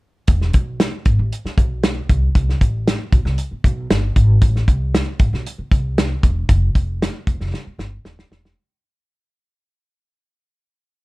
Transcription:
0.27 upright bass E1, kick, closed hi-hat
0.41 snare
0.53 upright bass B1, kick, closed hi-hat
0.80 snare, closed hi-hat
1.05 upright bass G#1, kick, closed hi-hat
1.19 upright bass A1
1.32 closed hi-hat
1.45 muted upright bass stroke, snare
1.58 upright bass B1, kick, closed hi-hat
1.83 snare, closed hi-hat
2.10 upright bass C2, kick, closed hi-hat
2.35 upright bass C2, kick, closed hi-hat
2.49 snare
2.61 upright bass A1, kick, closed hi-hat
2.88 snare, closed hi-hat
3.12 upright bass B1, kick, closed hi-hat
3.25 upright bass C2, snare
3.38 closed hi-hat
3.51 muted upright bass stroke
3.64 upright bass B1, kick, closed hi-hat
3.90 upright bass G1, snare, closed hi-hat
4.16 upright bass G#1, kick, closed hi-hat
4.42 upright bass A1, kick, closed hi-hat
4.56 snare
4.68 upright bass C2, kick, closed hi-hat
4.95 snare, closed hi-hat
5.19 upright bass A1, kick, closed hi-hat
5.33 upright bass B1, snare
5.46 closed hi-hat
5.58 muted upright bass stroke
5.71 upright bass C2, kick, closed hi-hat
5.98 snare, closed hi-hat
6.23 upright bass E1, kick, closed hi-hat
6.49 upright bass F1, kick, closed hi-hat
6.75 upright bass F1, kick, closed hi-hat
7.02 snare, closed hi-hat
7.27 upright bass E1, kick, closed hi-hat
7.41 upright bass F1, snare
7.54 snare
7.67 muted upright bass stroke
7.79 upright bass G1, snare
8.05 upright bass D#1, snare
8.19 snare
8.31 upright bass E1, snare
8.45 snare

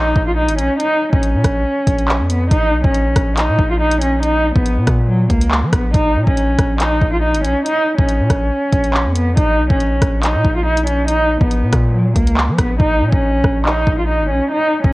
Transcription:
Already playing: 808-style bass A#1, cello D#4
0.16 808-style bass A#1, kick
0.27 cello F4
0.37 cello D#4
0.48 808-style bass G#1, closed hi-hat
0.58 808-style bass A#1, cello C#4, closed hi-hat
0.80 cello D#4, closed hi-hat
1.13 808-style bass A#1, cello C#4, kick
1.23 closed hi-hat
1.34 808-style bass A#2
1.44 808-style bass A#1, kick, cross-stick, closed hi-hat
1.87 808-style bass A#1, kick, closed hi-hat
1.99 closed hi-hat
2.09 clap
2.20 808-style bass F2
2.30 cello B3, closed hi-hat
2.51 808-style bass A#1, cello D#4, kick, closed hi-hat
2.73 808-style bass B1
2.84 808-style bass A#1, cello C#4, kick
2.94 closed hi-hat
3.16 808-style bass A#1, kick, cross-stick, closed hi-hat
3.37 cello D#4, clap, closed hi-hat
3.48 808-style bass A#2
3.58 808-style bass A#1, kick
3.70 cello F4
3.80 cello D#4
3.91 closed hi-hat
4.01 cello C#4, closed hi-hat
4.23 cello D#4, closed hi-hat
4.55 808-style bass A#1, cello B3, kick
4.66 closed hi-hat
4.77 808-style bass A#2
4.87 808-style bass A#2, kick, cross-stick, closed hi-hat
5.09 cello F#3
5.30 808-style bass C#2, cello A#3, kick, closed hi-hat
5.41 closed hi-hat
5.51 clap
5.63 808-style bass F3
5.73 808-style bass A#1, cello B3, kick, cross-stick, closed hi-hat
5.94 808-style bass A#1, cello D#4, kick, closed hi-hat
6.16 808-style bass A#2
6.27 808-style bass A#1, cello C#4, kick
6.37 closed hi-hat
6.58 808-style bass A#1, kick, cross-stick, closed hi-hat
6.80 cello D#4, clap, closed hi-hat
7.01 808-style bass A#1, kick
7.13 cello F4
7.23 cello D#4
7.34 808-style bass G#1, closed hi-hat
7.44 808-style bass A#1, cello C#4, closed hi-hat
7.65 cello D#4, closed hi-hat
7.98 808-style bass A#1, cello C#4, kick
8.09 closed hi-hat
8.20 808-style bass A#2
8.30 808-style bass A#1, kick, cross-stick, closed hi-hat
8.73 808-style bass A#1, kick, closed hi-hat
8.84 closed hi-hat
8.94 clap
9.06 808-style bass F2
9.16 cello B3, closed hi-hat
9.37 808-style bass A#1, cello D#4, kick, closed hi-hat
9.58 808-style bass B1
9.70 808-style bass A#1, cello C#4, kick
9.80 closed hi-hat
10.01 808-style bass A#1, kick, cross-stick, closed hi-hat
10.23 cello D#4, clap, closed hi-hat
10.34 808-style bass A#2
10.44 808-style bass A#1, kick
10.56 cello F4
10.66 cello D#4
10.77 closed hi-hat
10.87 cello C#4, closed hi-hat
11.08 cello D#4, closed hi-hat
11.41 808-style bass A#1, cello B3, kick
11.51 closed hi-hat
11.63 808-style bass A#2
11.73 808-style bass A#2, kick, cross-stick, closed hi-hat
11.94 cello F#3
12.16 808-style bass C#2, cello A#3, kick, closed hi-hat
12.27 closed hi-hat
12.37 clap
12.48 808-style bass F3
12.58 808-style bass A#1, cello B3, kick, cross-stick, closed hi-hat
12.80 808-style bass A#1, cello D#4, kick
13.01 808-style bass A#2
13.12 808-style bass A#1, cello C#4, kick
13.44 808-style bass A#1, kick, cross-stick
13.66 cello D#4, clap
13.87 808-style bass A#1, kick
13.99 cello F4
14.09 cello D#4
14.20 808-style bass G#1
14.30 808-style bass A#1, cello C#4
14.51 cello D#4
14.84 808-style bass A#1, cello C#4, kick

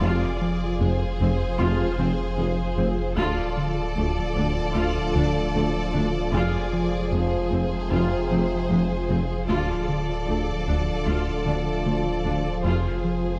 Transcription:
Already playing: synth drone F3 F4, violin section D5
0.01 tuba F1, double bass section F1, sub bass F1, analog synth bass F2, cello section F2, trombone section C3 F3, french horn section G#3 F4, viola section F4, synth drone G#4 F5, violin section G#4
0.41 analog synth bass F3
0.80 tuba F1, double bass section F1, analog synth bass F2, cello section F2, viola section G#3, violin section C5
1.20 tuba F1, double bass section F1, analog synth bass F2, cello section F2, viola section C4
1.59 tuba F1, double bass section F1, cello section F2, analog synth bass F2, trombone section C3 F3, french horn section G#3 F4, viola section F4, felt piano C6
1.99 tuba F1, double bass section F1, cello section F2, analog synth bass F3, viola section C4
2.39 double bass section F1, tuba F1, cello section F2, analog synth bass F3, viola section G#3
2.78 double bass section F1, tuba F1, cello section F2, analog synth bass F3, viola section C4
3.17 sub bass D1, analog synth bass D2, cello section D2, tuba D2, double bass section D2, trombone section D3 F3, synth drone F3 F4 A4, french horn section A3 F4, viola section F4, violin section A4 D5, felt piano A4 A5
3.57 analog synth bass D3
3.96 cello section D2, tuba D2, double bass section D2, analog synth bass D2, viola section A3
4.36 double bass section D2, cello section D2, tuba D2, analog synth bass D2, viola section D4
4.75 tuba D2, double bass section D2, cello section D2, analog synth bass D2, viola section F4
5.15 double bass section D2, cello section D2, tuba D2, analog synth bass D3, viola section D4
5.54 double bass section D2, cello section D2, tuba D2, analog synth bass D3, viola section A3
5.94 double bass section D2, cello section D2, tuba D2, analog synth bass D3, viola section D4
6.33 tuba F1, double bass section F1, sub bass F1, cello section F2, analog synth bass F2, trombone section C3, french horn section G#3, viola section F4, synth drone G#4 F5, violin section G#4, felt piano G#4 G#5
6.73 analog synth bass F3
7.12 double bass section F1, tuba F1, analog synth bass F2, cello section F2, viola section G#3, violin section C5
7.52 double bass section F1, tuba F1, analog synth bass F2, cello section F2, viola section C4
7.91 tuba F1, double bass section F1, analog synth bass F2, cello section F2, viola section F4
8.30 tuba F1, double bass section F1, cello section F2, analog synth bass F3, viola section C4
8.70 double bass section F1, tuba F1, cello section F2, analog synth bass F3, viola section G#3
9.10 tuba F1, double bass section F1, cello section F2, analog synth bass F3, viola section C4
9.49 sub bass D1, double bass section D2, analog synth bass D2, tuba D2, cello section D2, trombone section D3 F3, synth drone F3 F4 A4, french horn section A3 F4, viola section F4, violin section A4 D5
9.88 analog synth bass D3
10.27 analog synth bass D2, cello section D2, tuba D2, double bass section D2, viola section A3, felt piano A5
10.67 analog synth bass D2, tuba D2, cello section D2, double bass section D2, viola section D4
11.07 analog synth bass D2, tuba D2, double bass section D2, cello section D2, viola section F4
11.46 tuba D2, double bass section D2, cello section D2, analog synth bass D3, viola section D4
11.85 tuba D2, double bass section D2, cello section D2, analog synth bass D3, viola section A3
12.25 tuba D2, double bass section D2, cello section D2, analog synth bass D3, viola section D4
12.64 double bass section F1, tuba F1, sub bass F1, analog synth bass F2, cello section F2, trombone section C3, french horn section G#3, viola section F4, violin section G#4 C5, synth drone G#4 F5
13.05 analog synth bass F3

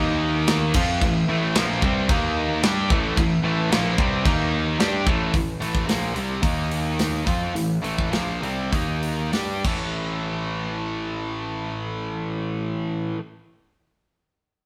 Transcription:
Already playing: picked electric bass D#2, distorted electric guitar D#3 A#3 D#4, analog synth pad D#4 A#4 F5
0.47 snare, crash
0.74 picked electric bass F2, distorted electric guitar F3 C4 F4, analog synth pad A3 E4 B4, kick, crash
1.01 picked electric bass A1, distorted electric guitar A2 E3, kick, crash
1.29 picked electric bass A1, distorted electric guitar A2 E3 A3
1.55 picked electric bass A#1, distorted electric guitar A#2 F3 A#3, snare, crash
1.82 picked electric bass C2, distorted electric guitar C3 G3 C4, kick
2.08 picked electric bass D#2, distorted electric guitar D#3 A#3 D#4, analog synth pad D#4 A#4 F5, kick, crash
2.62 picked electric bass G2, distorted electric guitar G3 D4 G4, analog synth pad A3 E4 B4, snare, crash
2.90 picked electric bass A1, distorted electric guitar A2 E3 A3, kick
3.17 picked electric bass A1, distorted electric guitar A2 E3, kick, crash
3.44 picked electric bass A1, distorted electric guitar A2 E3 A3
3.71 picked electric bass A#1, distorted electric guitar A#2 F3 A#3, snare, crash
3.98 picked electric bass C2, distorted electric guitar C3 G3 C4, kick
4.24 picked electric bass D#2, distorted electric guitar D#3 A#3 D#4, analog synth pad D#4 A#4 F5, kick, crash
4.78 picked electric bass G2, distorted electric guitar G3 D4 G4, analog synth pad A3 E4 B4, snare, crash
5.06 picked electric bass A1, distorted electric guitar A2 E3 A3, kick
5.34 picked electric bass A1, distorted electric guitar A2 E3, kick, open hi-hat
5.60 picked electric bass A1, distorted electric guitar A2 E3 A3, open hi-hat
5.75 kick
5.86 picked electric bass A#1, distorted electric guitar A#2 F3 A#3, snare, open hi-hat
6.14 picked electric bass C2, distorted electric guitar C3 G3 C4, open hi-hat
6.42 picked electric bass D#2, distorted electric guitar D#3 A#3 D#4, kick, open hi-hat
6.72 open hi-hat
6.99 snare, open hi-hat
7.25 picked electric bass F2, distorted electric guitar F3 C4 F4, kick, open hi-hat
7.54 picked electric bass A1, distorted electric guitar A2 E3, open hi-hat
7.82 picked electric bass A1, distorted electric guitar A2 E3 A3, open hi-hat
7.98 kick
8.11 picked electric bass A#1, distorted electric guitar A#2 F3 A#3, snare, open hi-hat
8.42 picked electric bass C2, distorted electric guitar C3 G3 C4, open hi-hat
8.72 picked electric bass D#2, distorted electric guitar D#3 A#3 D#4, kick, open hi-hat
9.03 open hi-hat
9.32 picked electric bass G2, distorted electric guitar G3 D4 G4, snare, open hi-hat
9.64 picked electric bass A1, distorted electric guitar A2 E3 A3, kick, crash

